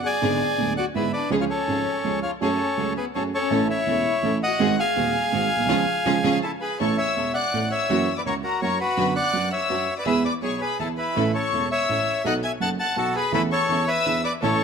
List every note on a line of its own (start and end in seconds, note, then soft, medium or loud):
0.04 0.73 G#4 medium
0.04 0.73 D5 medium
0.04 0.73 G#5 medium
0.22 0.37 G#1 medium
0.22 0.37 G#2 medium
0.22 0.37 D3 medium
0.22 0.37 G#3 medium
0.22 0.37 B3 medium
0.22 0.38 B3 medium
0.22 0.38 D4 medium
0.22 0.38 G#4 medium
0.58 0.74 D1 medium
0.58 0.74 D2 medium
0.58 0.74 D3 soft
0.58 0.74 G#3 soft
0.58 0.74 B3 soft
0.58 0.74 D4 soft
0.58 0.74 G#4 medium
0.58 0.74 G#4 soft
0.77 0.85 F#4 medium
0.77 0.86 D5 medium
0.77 0.85 F#5 medium
0.94 1.10 G#1 soft
0.94 1.10 G#2 medium
0.94 1.10 D3 soft
0.94 1.10 G#3 soft
0.94 1.10 B3 soft
0.94 1.10 D4 soft
0.94 1.12 E4 medium
0.94 1.10 G#4 soft
0.94 1.10 G#4 medium
0.94 1.12 B4 medium
0.94 1.12 E5 medium
1.13 1.31 D4 medium
1.13 1.30 B4 medium
1.13 1.30 D5 medium
1.30 1.46 C#2 medium
1.30 1.46 C#3 medium
1.30 1.46 F3 medium
1.30 1.46 G#3 medium
1.30 1.46 C#4 medium
1.30 1.47 C#4 medium
1.30 1.36 C#4 medium
1.30 1.47 F4 medium
1.30 1.46 G#4 medium
1.30 1.47 G#4 medium
1.30 1.36 G#4 medium
1.30 1.35 C#5 medium
1.40 1.44 F4 medium
1.40 1.45 C#5 medium
1.40 1.45 F5 medium
1.49 2.19 C#4 medium
1.49 2.20 A4 medium
1.49 2.20 C#5 medium
1.68 1.83 G#1 soft
1.68 1.83 G#2 soft
1.68 1.83 F3 soft
1.68 1.83 G#3 soft
1.68 1.83 C#4 soft
1.68 1.83 F4 soft
1.68 1.83 G#4 soft
2.04 2.20 C#2 soft
2.04 2.20 C#3 soft
2.04 2.20 F3 soft
2.04 2.20 G#3 soft
2.04 2.20 C#4 soft
2.04 2.21 F4 soft
2.04 2.20 G#4 soft
2.04 2.21 G#4 soft
2.22 2.31 F4 medium
2.22 2.31 C#5 medium
2.22 2.31 F5 medium
2.41 2.57 F#2 medium
2.41 2.57 F#3 medium
2.41 2.57 A3 medium
2.41 2.57 C#4 medium
2.41 2.93 C#4 medium
2.41 2.57 F#4 medium
2.41 2.57 G#4 medium
2.41 2.93 A4 medium
2.41 2.93 C#5 medium
2.77 2.93 C#2 soft
2.77 2.93 C#3 soft
2.77 2.93 F#3 soft
2.77 2.93 A3 soft
2.77 2.94 A3 soft
2.77 2.94 C#4 soft
2.77 2.94 F#4 soft
2.77 2.94 G#4 soft
2.97 3.06 B3 medium
2.97 3.05 G#4 medium
2.97 3.05 B4 medium
3.15 3.31 F#2 medium
3.15 3.31 F#3 soft
3.15 3.30 A3 soft
3.15 3.31 A3 soft
3.15 3.31 C#4 soft
3.15 3.24 C#4 medium
3.15 3.30 F#4 soft
3.15 3.31 G#4 soft
3.15 3.24 A4 medium
3.15 3.23 C#5 medium
3.34 3.68 C#4 medium
3.34 3.68 A4 medium
3.34 3.68 C#5 medium
3.50 3.66 A1 medium
3.50 3.66 A2 medium
3.50 3.66 E3 medium
3.50 3.66 A3 medium
3.50 3.67 C#4 medium
3.50 3.67 E4 medium
3.50 3.67 A4 medium
3.70 4.38 E4 medium
3.70 4.38 C#5 medium
3.70 4.38 E5 medium
3.86 4.02 E1 soft
3.86 4.02 E2 medium
3.86 4.02 E3 soft
3.86 4.02 A3 soft
3.86 4.02 C#4 soft
3.86 4.03 C#4 soft
3.86 4.03 E4 soft
3.86 4.02 A4 soft
3.86 4.03 A4 soft
4.22 4.38 A1 medium
4.22 4.38 A2 soft
4.22 4.38 E3 soft
4.22 4.38 A3 soft
4.22 4.38 C#4 soft
4.22 4.39 C#4 soft
4.22 4.39 E4 soft
4.22 4.38 A4 soft
4.22 4.39 A4 medium
4.43 4.76 F#4 medium
4.43 4.76 D#5 medium
4.43 4.80 F#5 medium
4.59 4.75 G#1 medium
4.59 4.75 G#2 medium
4.59 4.75 D#3 medium
4.59 4.75 G#3 medium
4.59 4.75 C4 medium
4.59 4.75 F#4 medium
4.59 4.75 G#4 medium
4.78 6.38 G#4 medium
4.78 6.39 F5 medium
4.78 6.39 G#5 medium
4.96 5.11 D#1 medium
4.96 5.11 D#2 medium
4.96 5.11 D#3 soft
4.96 5.11 G#3 soft
4.96 5.11 C4 soft
4.96 5.11 F#4 soft
4.96 5.11 G#4 soft
5.32 5.48 G#1 medium
5.32 5.48 G#2 medium
5.32 5.47 D#3 soft
5.32 5.47 G#3 soft
5.32 5.47 C4 soft
5.32 5.47 F#4 soft
5.32 5.48 F#4 medium
5.32 5.47 G#4 soft
5.56 5.60 A#1 soft
5.56 5.64 B1 medium
5.65 5.69 C2 medium
5.65 5.80 C#3 medium
5.65 5.81 G#3 medium
5.65 5.80 C#4 medium
5.65 5.80 F4 medium
5.65 5.80 G#4 medium
5.69 5.81 F3 medium
6.05 6.17 C#3 medium
6.05 6.17 F3 medium
6.05 6.17 G#3 medium
6.05 6.17 C#4 medium
6.05 6.17 F4 medium
6.05 6.17 G#4 medium
6.24 6.36 C#3 medium
6.24 6.36 F3 medium
6.24 6.36 G#3 medium
6.24 6.35 C#4 medium
6.24 6.35 F4 medium
6.24 6.35 G#4 loud
6.42 6.52 E4 medium
6.42 6.51 A4 medium
6.42 6.50 A5 medium
6.61 6.79 G#4 medium
6.61 6.78 B4 medium
6.61 6.78 B5 medium
6.80 6.95 A1 medium
6.80 6.95 A2 medium
6.80 6.95 E3 medium
6.80 6.95 A3 medium
6.80 6.95 C#4 medium
6.80 6.95 E4 medium
6.80 6.95 A4 medium
6.80 6.97 A4 medium
6.80 6.97 C#5 medium
6.80 6.97 C#6 medium
6.98 7.32 C#5 medium
6.98 7.35 E5 medium
6.98 7.32 E6 medium
7.16 7.31 E1 soft
7.16 7.31 E2 soft
7.16 7.32 C#4 soft
7.16 7.32 E4 soft
7.16 7.32 A4 soft
7.34 7.69 D5 medium
7.34 7.72 F#5 medium
7.34 7.68 F#6 medium
7.53 7.68 A1 soft
7.53 7.69 A2 soft
7.53 7.68 C#4 soft
7.53 7.68 E4 soft
7.53 7.69 A4 soft
7.71 8.14 C#5 medium
7.71 8.13 E5 medium
7.71 8.14 E6 medium
7.89 8.05 F#2 medium
7.89 8.05 E3 medium
7.89 8.05 F#3 medium
7.89 8.05 A#3 medium
7.89 8.05 C#4 medium
7.89 8.05 E4 medium
7.89 8.05 F#4 medium
8.17 8.22 B4 medium
8.17 8.22 D5 medium
8.17 8.21 D6 medium
8.26 8.41 C#2 soft
8.26 8.41 C#3 soft
8.26 8.41 A#3 soft
8.26 8.41 E4 soft
8.26 8.41 F#4 soft
8.26 8.35 A#4 medium
8.26 8.34 C#5 medium
8.26 8.35 C#6 medium
8.43 8.61 F#4 medium
8.43 8.60 A#4 medium
8.43 8.61 A#5 medium
8.62 8.77 F#2 medium
8.62 8.77 F#3 medium
8.62 8.77 A#3 soft
8.62 8.77 E4 soft
8.62 8.77 F#4 soft
8.62 8.79 A#4 medium
8.62 8.79 C#5 medium
8.62 8.79 C#6 medium
8.80 9.14 F#4 medium
8.80 9.14 B4 medium
8.80 9.14 B5 medium
8.97 9.13 F#2 medium
8.97 9.13 D3 medium
8.97 9.13 F#3 medium
8.97 9.13 B3 medium
8.97 9.13 D4 medium
8.97 9.13 F#4 medium
9.15 9.49 D5 medium
9.15 9.53 F#5 medium
9.15 9.50 F#6 medium
9.33 9.49 F#2 medium
9.33 9.49 F#3 soft
9.33 9.49 B3 soft
9.33 9.49 D4 soft
9.33 9.49 F#4 soft
9.52 9.94 C#5 medium
9.52 9.94 E5 medium
9.52 9.94 E6 medium
9.69 9.85 F#2 soft
9.69 9.85 F#3 soft
9.69 9.85 F#3 medium
9.69 9.85 B3 soft
9.69 9.85 D4 soft
9.69 9.85 F#4 medium
9.98 10.06 B4 medium
9.98 10.06 D5 medium
9.98 10.06 D6 medium
10.06 10.21 E2 medium
10.06 10.21 E3 medium
10.06 10.21 G#3 medium
10.06 10.21 B3 medium
10.06 10.21 E4 medium
10.06 10.21 G#4 medium
10.06 10.23 B4 medium
10.06 10.23 E5 medium
10.06 10.23 E6 medium
10.25 10.33 B4 medium
10.25 10.33 D5 medium
10.25 10.33 D6 medium
10.42 10.58 B1 soft
10.42 10.58 B2 soft
10.42 10.58 B3 soft
10.42 10.58 E4 soft
10.42 10.58 G#4 soft
10.42 10.60 G#4 medium
10.42 10.62 C#5 medium
10.42 10.60 C#6 medium
10.61 10.78 G#4 soft
10.61 10.78 B4 medium
10.61 10.78 B5 medium
10.79 10.95 E2 soft
10.79 10.95 E3 soft
10.79 10.95 B3 soft
10.79 10.95 E4 soft
10.79 10.88 E4 medium
10.79 10.95 G#4 soft
10.79 10.88 A4 medium
10.79 10.88 A5 medium
10.97 11.32 E4 medium
10.97 11.32 B4 medium
10.97 11.31 B5 medium
11.16 11.31 A1 medium
11.16 11.32 A2 medium
11.16 11.31 E3 medium
11.16 11.32 A3 medium
11.16 11.31 C#4 medium
11.16 11.32 C#4 medium
11.16 11.31 E4 medium
11.16 11.31 A4 medium
11.16 11.32 A4 medium
11.34 11.68 A4 medium
11.34 11.68 C#5 medium
11.34 11.68 C#6 medium
11.52 11.68 E1 soft
11.52 11.68 E2 soft
11.52 11.68 C#4 soft
11.52 11.68 E4 soft
11.52 11.68 A4 soft
11.71 12.22 C#5 medium
11.71 12.27 E5 medium
11.71 12.22 E6 medium
11.89 12.04 A1 medium
11.89 12.04 A2 soft
11.89 12.04 C#4 soft
11.89 12.04 E4 soft
11.89 12.04 A4 soft
12.24 12.40 B1 medium
12.24 12.40 B2 medium
12.24 12.40 F#3 medium
12.24 12.40 B3 medium
12.24 12.40 D#4 medium
12.24 12.40 A4 medium
12.24 12.34 D#5 medium
12.24 12.34 F#5 medium
12.24 12.34 F#6 medium
12.43 12.52 E5 medium
12.43 12.52 G#5 medium
12.43 12.51 G#6 medium
12.60 12.76 F#1 medium
12.60 12.76 F#2 medium
12.60 12.76 B3 soft
12.60 12.76 D#4 soft
12.60 12.76 A4 soft
12.60 12.69 F#5 medium
12.60 12.70 A5 medium
12.60 12.69 A6 medium
12.80 12.96 F#5 medium
12.80 12.98 A5 medium
12.80 12.96 A6 medium
12.96 13.12 B1 medium
12.96 13.12 B2 medium
12.96 13.12 B3 soft
12.96 13.13 D#4 soft
12.96 13.14 F#4 medium
12.96 13.16 A4 medium
12.96 13.13 A4 medium
12.96 13.14 A5 medium
13.15 13.32 G#4 medium
13.15 13.32 B4 medium
13.15 13.32 B5 medium
13.32 13.48 E2 medium
13.32 13.48 E3 medium
13.32 13.49 E3 medium
13.32 13.48 A3 medium
13.32 13.48 C#4 medium
13.32 13.49 C#4 medium
13.32 13.49 E4 medium
13.32 13.42 E4 medium
13.32 13.48 A4 medium
13.32 13.49 A4 medium
13.32 13.42 B4 medium
13.32 13.41 B5 medium
13.51 13.85 A4 medium
13.51 13.89 C#5 medium
13.51 13.85 C#6 medium
13.68 13.84 E2 medium
13.68 13.84 E3 medium
13.68 13.85 E3 soft
13.68 13.85 C#4 soft
13.68 13.85 E4 soft
13.68 13.85 A4 medium
13.88 14.22 B4 medium
13.88 14.22 E5 loud
13.88 14.21 E6 medium
14.05 14.21 E2 medium
14.05 14.21 E3 medium
14.05 14.21 D4 soft
14.05 14.21 E4 soft
14.05 14.21 G#4 medium
14.24 14.33 B4 medium
14.24 14.33 D5 medium
14.24 14.33 D6 medium
14.42 14.58 A1 medium
14.42 14.58 A2 medium
14.42 14.58 E3 medium
14.42 14.58 A3 medium
14.42 14.58 C#4 medium
14.42 14.58 E4 medium
14.42 14.64 A4 medium
14.42 14.58 A4 medium
14.42 14.64 C#5 medium
14.42 14.64 C#6 medium